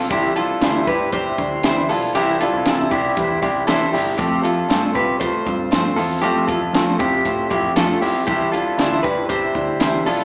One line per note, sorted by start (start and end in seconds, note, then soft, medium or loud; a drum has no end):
0.00 0.11 C4 soft
0.00 0.10 F4 medium
0.00 0.11 F4 soft
0.00 0.11 A4 medium
0.00 0.11 C5 medium
0.10 0.54 C2 medium
0.10 0.36 C3 medium
0.10 0.36 E3 medium
0.10 0.37 G3 medium
0.10 0.37 D4 medium
0.10 0.35 E4 medium
0.10 0.36 E4 medium
0.10 0.36 G4 loud
0.10 0.35 C5 medium
0.10 kick loud
0.10 closed hi-hat medium
0.36 0.61 G3 soft
0.36 0.61 D4 soft
0.36 0.62 E4 medium
0.36 0.84 F4 medium
0.36 0.84 A4 medium
0.36 0.62 C5 medium
0.36 closed hi-hat medium
0.61 0.83 D2 medium
0.61 0.87 C3 medium
0.61 0.88 E3 medium
0.61 0.88 G3 medium
0.61 0.88 D4 loud
0.61 0.88 E4 medium
0.61 0.87 C5 medium
0.61 snare loud
0.61 closed hi-hat medium
0.87 1.31 G1 medium
0.87 1.12 G3 soft
0.87 1.13 D4 soft
0.87 1.14 E4 medium
0.87 1.12 G4 medium
0.87 1.13 B4 medium
0.87 1.13 C5 medium
0.87 kick medium
0.87 closed hi-hat medium
1.12 1.38 G3 medium
1.12 1.39 D4 medium
1.12 1.38 E4 medium
1.12 1.86 G4 medium
1.12 1.85 C5 medium
1.12 1.37 C5 medium
1.12 kick medium
1.12 closed hi-hat medium
1.38 1.91 D2 medium
1.38 1.63 G3 soft
1.38 1.64 D4 medium
1.38 1.64 E4 soft
1.38 1.64 C5 medium
1.38 kick medium
1.38 closed hi-hat medium
1.63 1.89 C3 medium
1.63 1.90 E3 medium
1.63 1.90 G3 medium
1.63 1.90 D4 medium
1.63 1.90 E4 medium
1.63 1.88 C5 loud
1.63 snare loud
1.63 closed hi-hat medium
1.89 2.11 B1 medium
1.89 2.15 G3 soft
1.89 2.15 D4 soft
1.89 2.15 E4 medium
1.89 2.14 F4 medium
1.89 2.15 A4 medium
1.89 2.15 C5 medium
1.89 open hi-hat medium
2.15 2.47 C2 medium
2.15 2.41 C3 medium
2.15 2.41 E3 medium
2.15 2.41 G3 medium
2.15 2.41 D4 medium
2.15 2.40 E4 medium
2.15 2.41 E4 medium
2.15 2.40 G4 loud
2.15 2.40 C5 medium
2.15 closed hi-hat medium
2.41 2.64 G3 soft
2.41 2.64 D4 soft
2.41 2.65 E4 medium
2.41 2.89 F4 medium
2.41 2.88 A4 medium
2.41 2.65 C5 medium
2.41 closed hi-hat medium
2.53 2.64 C2 medium
2.65 2.91 C3 medium
2.65 2.88 C3 medium
2.65 2.91 E3 medium
2.65 2.91 G3 medium
2.65 2.91 D4 medium
2.65 2.91 E4 medium
2.65 2.91 C5 medium
2.65 snare loud
2.65 closed hi-hat medium
2.91 3.13 C2 medium
2.91 3.15 G3 soft
2.91 3.16 D4 soft
2.91 3.40 E4 medium
2.91 3.17 E4 medium
2.91 3.39 G4 medium
2.91 3.17 C5 medium
2.91 kick medium
2.91 closed hi-hat medium
3.16 3.39 E2 medium
3.16 3.42 G3 medium
3.16 3.42 D4 medium
3.16 3.41 E4 medium
3.16 3.41 C5 medium
3.16 kick medium
3.16 closed hi-hat medium
3.42 3.86 C2 medium
3.42 3.66 G3 soft
3.42 3.67 D4 soft
3.42 3.67 E4 medium
3.42 3.68 G4 medium
3.42 3.67 C5 medium
3.42 kick medium
3.42 closed hi-hat medium
3.67 3.93 C3 medium
3.67 3.93 E3 medium
3.67 3.93 G3 medium
3.67 3.92 D4 medium
3.67 3.91 E4 medium
3.67 3.93 E4 medium
3.67 3.93 A4 medium
3.67 3.91 C5 medium
3.67 snare loud
3.67 closed hi-hat medium
3.92 4.15 G1 medium
3.92 4.17 G3 soft
3.92 4.18 D4 soft
3.92 4.18 E4 soft
3.92 4.19 E4 medium
3.92 4.16 G4 medium
3.92 4.18 C5 medium
3.92 open hi-hat medium
4.18 4.62 F2 loud
4.18 4.44 F3 medium
4.18 4.44 A3 medium
4.18 4.44 C4 medium
4.18 4.43 C4 medium
4.18 4.42 F4 medium
4.18 4.44 G4 loud
4.18 4.41 C5 medium
4.18 kick loud
4.18 closed hi-hat medium
4.42 4.68 C4 soft
4.42 4.68 F4 soft
4.42 4.92 F4 soft
4.42 4.92 A4 medium
4.42 4.68 C5 medium
4.42 closed hi-hat medium
4.68 4.91 G2 medium
4.68 4.95 F3 medium
4.68 4.95 A3 medium
4.68 4.95 C4 medium
4.68 4.94 F4 medium
4.68 4.93 C5 medium
4.68 snare loud
4.68 closed hi-hat medium
4.94 5.39 C2 medium
4.94 5.19 C4 soft
4.94 5.20 F4 soft
4.94 5.20 G4 medium
4.94 5.19 B4 medium
4.94 5.20 C5 medium
4.94 kick medium
4.94 closed hi-hat soft
5.19 5.45 A3 medium
5.19 5.46 C4 medium
5.19 5.45 F4 medium
5.19 5.94 A4 medium
5.19 5.93 C5 medium
5.19 5.44 C5 medium
5.19 kick medium
5.19 closed hi-hat medium
5.45 5.90 G2 medium
5.45 5.71 C4 soft
5.45 5.71 F4 soft
5.45 5.71 C5 medium
5.45 kick medium
5.45 closed hi-hat medium
5.71 5.97 F3 medium
5.71 5.97 A3 medium
5.71 5.98 C4 medium
5.71 5.98 F4 medium
5.71 5.96 C5 loud
5.71 snare loud
5.71 closed hi-hat medium
5.96 6.19 E2 medium
5.96 6.23 C4 soft
5.96 6.21 F4 medium
5.96 6.23 F4 medium
5.96 6.23 A4 medium
5.96 6.23 C5 soft
5.96 open hi-hat medium
6.22 6.55 F2 medium
6.22 6.49 F3 medium
6.22 6.49 A3 medium
6.22 6.48 C4 medium
6.22 6.49 C4 medium
6.22 6.49 F4 medium
6.22 6.48 G4 loud
6.22 6.48 C5 medium
6.22 closed hi-hat medium
6.47 6.73 C4 soft
6.47 6.97 F4 medium
6.47 6.73 F4 medium
6.47 6.96 A4 medium
6.47 6.74 C5 medium
6.47 kick medium
6.47 closed hi-hat medium
6.60 6.72 F2 medium
6.73 6.95 F3 medium
6.73 6.99 F3 medium
6.73 7.00 A3 medium
6.73 7.00 C4 medium
6.73 6.99 F4 medium
6.73 6.98 C5 medium
6.73 snare loud
6.73 closed hi-hat medium
6.99 7.22 F2 medium
6.99 7.24 C4 soft
6.99 7.48 E4 medium
6.99 7.25 F4 soft
6.99 7.48 G4 medium
6.99 7.25 C5 medium
6.99 kick medium
6.99 closed hi-hat medium
7.25 7.47 A2 medium
7.25 7.51 A3 medium
7.25 7.50 C4 medium
7.25 7.50 F4 medium
7.25 7.48 C5 medium
7.25 kick medium
7.25 closed hi-hat medium
7.49 7.94 F2 medium
7.49 7.75 C4 soft
7.49 7.76 E4 medium
7.49 7.75 F4 medium
7.49 7.76 G4 medium
7.49 7.76 C5 medium
7.49 kick medium
7.49 closed hi-hat medium
7.75 8.02 F3 medium
7.75 8.02 A3 medium
7.75 8.02 C4 medium
7.75 8.01 F4 medium
7.75 8.02 F4 medium
7.75 8.02 A4 medium
7.75 8.01 C5 medium
7.75 snare loud
7.75 closed hi-hat medium
8.01 8.23 B1 medium
8.01 8.28 C4 soft
8.01 8.26 E4 medium
8.01 8.28 F4 soft
8.01 8.26 G4 medium
8.01 8.27 C5 medium
8.01 open hi-hat medium
8.27 8.71 C2 medium
8.27 8.53 C3 medium
8.27 8.53 E3 medium
8.27 8.53 G3 medium
8.27 8.53 D4 medium
8.27 8.51 E4 medium
8.27 8.53 E4 medium
8.27 8.52 G4 loud
8.27 8.52 C5 medium
8.27 kick loud
8.27 closed hi-hat medium
8.52 8.79 G3 soft
8.52 8.78 D4 soft
8.52 8.79 E4 soft
8.52 9.01 F4 medium
8.52 9.00 A4 medium
8.52 8.79 C5 medium
8.52 closed hi-hat medium
8.77 9.00 D2 medium
8.77 9.04 C3 medium
8.77 9.04 E3 medium
8.77 9.05 G3 medium
8.77 9.04 D4 medium
8.77 9.03 E4 medium
8.77 9.03 C5 medium
8.77 snare medium
8.77 closed hi-hat medium
9.03 9.48 G1 medium
9.03 9.28 G3 soft
9.03 9.28 D4 soft
9.03 9.29 E4 medium
9.03 9.28 G4 medium
9.03 9.29 B4 medium
9.03 9.30 C5 medium
9.03 kick medium
9.03 closed hi-hat medium
9.29 9.55 G3 medium
9.29 9.55 D4 medium
9.29 9.54 E4 medium
9.29 10.02 G4 medium
9.29 10.02 C5 medium
9.29 9.53 C5 medium
9.29 kick medium
9.29 closed hi-hat medium
9.54 9.99 D2 medium
9.54 9.79 G3 soft
9.54 9.79 D4 medium
9.54 9.80 E4 medium
9.54 9.80 C5 soft
9.54 kick medium
9.54 closed hi-hat medium
9.79 10.06 C3 medium
9.79 10.06 E3 medium
9.79 10.06 G3 medium
9.79 10.05 D4 loud
9.79 10.04 E4 medium
9.79 10.03 C5 loud
9.79 snare loud
9.79 closed hi-hat medium
10.05 10.24 B1 medium
10.05 10.24 G3 soft
10.05 10.24 D4 soft
10.05 10.24 E4 medium
10.05 10.24 F4 soft
10.05 10.24 A4 medium
10.05 10.24 C5 soft
10.05 open hi-hat medium